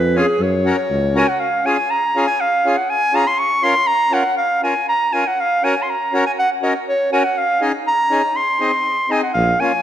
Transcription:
Already playing: F2 B4
0.16 C#4 F4 G#4
0.39 F#2 C#5
0.65 C#4 F#4 A#4
0.90 C#2
1.15 C#4 F#4 A#4 G#5
1.28 F#5
1.39 F5
1.65 C#4 F4 G#4 G#5
1.90 A#5
2.15 C#4 F4 G#4
2.27 G#5
2.40 F5
2.65 C#4 F4 G#4
2.77 F#5
2.90 G#5
3.13 C#4 F4 G#4 A#5
3.27 C6
3.39 C#6
3.63 C#4 F4 A#4 C6
3.87 A#5
4.11 C#4 F4 A#4 F#5
4.37 F5
4.63 C#4 F4 A#4 G#5
4.89 A#5
5.13 C#4 F4 A#4 G#5
5.27 F#5
5.40 F5
5.63 C#4 F#4 A#4 G#5
5.82 C6
5.90 A#5
6.13 C#4 F#4 A#4
6.26 G#5
6.39 F#5
6.62 C#4 F#4 A#4 D#5
6.88 C#5
7.12 C#4 F#4 A#4 G#5
7.24 F#5
7.38 F5
7.61 C#4 D#4 G#4
7.87 A#5
8.10 C#4 D#4 G#4
8.36 C6
8.60 C4 D#4 G#4
9.09 C4 D#4 G#4 G#5
9.23 F#5
9.33 A#1 F5
9.60 A#3 C#4 F4 G#5

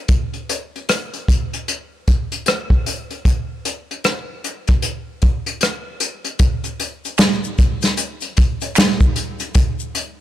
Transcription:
0.08 kick, closed hi-hat
0.34 closed hi-hat
0.49 closed hi-hat
0.76 closed hi-hat
0.89 cross-stick, closed hi-hat
1.14 closed hi-hat
1.28 kick, closed hi-hat
1.53 closed hi-hat
1.68 closed hi-hat
2.08 kick, closed hi-hat
2.32 closed hi-hat
2.46 cross-stick, closed hi-hat
2.70 kick
2.86 closed hi-hat
3.11 closed hi-hat
3.25 kick, closed hi-hat
3.65 closed hi-hat
3.91 closed hi-hat
4.04 cross-stick, closed hi-hat
4.44 closed hi-hat
4.67 kick, cross-stick, closed hi-hat
4.82 closed hi-hat
5.22 kick, closed hi-hat
5.46 closed hi-hat
5.61 cross-stick, closed hi-hat
6.00 closed hi-hat
6.24 closed hi-hat
6.39 kick, closed hi-hat, shaker
6.64 closed hi-hat, shaker
6.80 closed hi-hat
7.05 closed hi-hat, shaker
7.18 finger snap, snare, closed hi-hat, shaker
7.44 shaker
7.58 kick, closed hi-hat, shaker
7.82 snare, closed hi-hat, shaker
7.97 closed hi-hat, shaker
8.21 closed hi-hat, shaker
8.37 kick, closed hi-hat
8.61 closed hi-hat, shaker
8.75 finger snap, snare, closed hi-hat, shaker
9.01 kick, shaker
9.16 closed hi-hat
9.40 closed hi-hat, shaker
9.55 kick, closed hi-hat, shaker
9.79 shaker
9.95 closed hi-hat

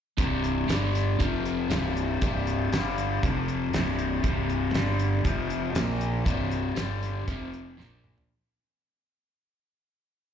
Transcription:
0.18 C1 C2 G2 C3, kick, closed hi-hat
0.44 closed hi-hat
0.69 G1 G2 D3 G3, snare, closed hi-hat
0.95 snare, closed hi-hat
1.20 F1 F2 C3 F3, kick, closed hi-hat
1.46 closed hi-hat
1.71 C1 C2 G2 C3, snare, closed hi-hat
1.97 closed hi-hat
2.22 C1 C2 G2 C3, kick, closed hi-hat
2.47 closed hi-hat
2.73 G1 G2 D3 G3, snare, closed hi-hat
2.98 closed hi-hat
3.23 F1 F2 C3 F3, kick, closed hi-hat
3.48 closed hi-hat
3.73 C1 C2 G2 C3, snare, closed hi-hat
3.99 closed hi-hat
4.23 C1 C2 G2 C3, kick, closed hi-hat
4.50 closed hi-hat
4.74 G1 G2 D3 G3, snare, closed hi-hat
4.99 closed hi-hat
5.24 F1 F2 C3 F3, kick, closed hi-hat
5.50 closed hi-hat
5.74 A#1 A#2 F3 A#3, snare, closed hi-hat
6.01 closed hi-hat
6.26 C1 C2 G2 C3, kick, closed hi-hat
6.51 closed hi-hat
6.76 G1 G2 D3 G3, snare, closed hi-hat
7.03 snare, closed hi-hat
7.27 F1 F2 C3 F3, kick, closed hi-hat
7.54 closed hi-hat
7.78 A#1 A#2 F3 A#3, snare
8.04 mid tom
8.18 floor tom

